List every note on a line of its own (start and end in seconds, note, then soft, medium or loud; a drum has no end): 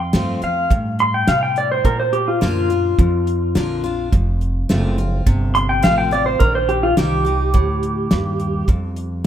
0.00 0.12 F2 medium
0.00 0.65 F2 medium
0.00 0.41 C6 medium
0.13 0.40 G2 medium
0.13 0.41 F3 medium
0.13 0.41 A3 medium
0.13 0.42 C4 medium
0.13 0.41 F4 loud
0.13 snare loud
0.13 closed hi-hat medium
0.42 0.70 C4 soft
0.42 0.69 F4 medium
0.42 0.71 F5 medium
0.42 muted upright bass stroke soft
0.42 closed hi-hat medium
0.70 1.25 G2 medium
0.70 1.26 A2 medium
0.70 kick medium
0.70 closed hi-hat medium
0.99 1.14 C6 loud
0.99 closed hi-hat medium
1.14 1.28 G5 medium
1.27 1.82 A2 medium
1.27 1.83 C3 medium
1.27 1.42 F5 medium
1.27 snare loud
1.27 closed hi-hat medium
1.43 1.56 G5 medium
1.56 1.71 D5 medium
1.56 closed hi-hat medium
1.72 1.85 C5 medium
1.85 2.40 A#2 medium
1.85 2.93 A#2 medium
1.85 1.99 A#4 medium
1.85 kick medium
1.85 closed hi-hat medium
2.00 2.13 C5 medium
2.13 2.27 G4 medium
2.13 closed hi-hat medium
2.28 2.41 F4 medium
2.41 2.97 F#2 medium
2.41 2.69 D3 medium
2.41 2.69 A#3 medium
2.41 2.69 D4 medium
2.41 4.09 F4 medium
2.41 2.69 F4 medium
2.41 snare loud
2.41 closed hi-hat medium
2.70 2.99 D4 medium
2.70 2.98 F4 medium
2.70 closed hi-hat medium
2.99 3.54 F2 loud
2.99 4.07 F2 medium
2.99 kick loud
2.99 closed hi-hat medium
3.27 closed hi-hat medium
3.55 4.11 A#1 medium
3.55 3.83 D3 medium
3.55 3.83 A#3 medium
3.55 3.84 D4 medium
3.55 3.82 F4 medium
3.55 snare loud
3.55 closed hi-hat medium
3.84 4.12 D4 medium
3.84 4.11 F4 medium
3.84 closed hi-hat medium
4.12 4.68 F1 medium
4.12 5.21 F2 medium
4.12 kick loud
4.12 closed hi-hat medium
4.41 closed hi-hat medium
4.69 5.25 F#1 medium
4.69 4.97 F3 medium
4.69 4.97 A3 medium
4.69 4.97 C4 medium
4.69 4.97 F4 medium
4.69 snare loud
4.69 closed hi-hat medium
4.98 5.27 C4 soft
4.98 5.25 F4 medium
4.98 closed hi-hat medium
5.27 5.82 G1 medium
5.27 6.35 C3 loud
5.27 kick loud
5.27 closed hi-hat medium
5.55 5.69 C6 loud
5.55 closed hi-hat medium
5.69 5.83 G5 medium
5.82 6.39 A1 medium
5.82 6.10 F3 medium
5.82 6.11 A3 medium
5.82 6.11 C4 medium
5.82 6.10 F4 loud
5.82 5.97 F5 medium
5.82 snare loud
5.82 closed hi-hat medium
5.98 6.12 G5 medium
6.11 6.40 C4 soft
6.11 6.39 F4 medium
6.11 6.26 D5 medium
6.11 closed hi-hat medium
6.26 6.40 C5 medium
6.40 6.96 A#1 medium
6.40 6.96 D#3 medium
6.40 6.54 A#4 loud
6.40 kick loud
6.40 closed hi-hat medium
6.55 6.69 C5 medium
6.69 6.83 G4 medium
6.69 closed hi-hat medium
6.83 6.97 F4 medium
6.97 7.53 C2 medium
6.97 7.25 D#3 medium
6.97 7.25 A#3 medium
6.97 7.25 D#4 medium
6.97 8.64 G4 loud
6.97 7.23 G4 medium
6.97 snare loud
6.97 closed hi-hat medium
7.25 7.54 D#4 soft
7.25 7.53 G4 medium
7.25 closed hi-hat medium
7.54 8.10 D2 loud
7.54 8.08 A2 medium
7.54 kick loud
7.54 closed hi-hat medium
7.83 closed hi-hat medium
8.11 8.67 D#2 medium
8.11 8.65 G2 medium
8.11 snare loud
8.11 closed hi-hat medium
8.40 closed hi-hat medium
8.68 9.24 F2 medium
8.68 9.26 F2 medium
8.68 kick loud
8.68 closed hi-hat medium
8.96 closed hi-hat medium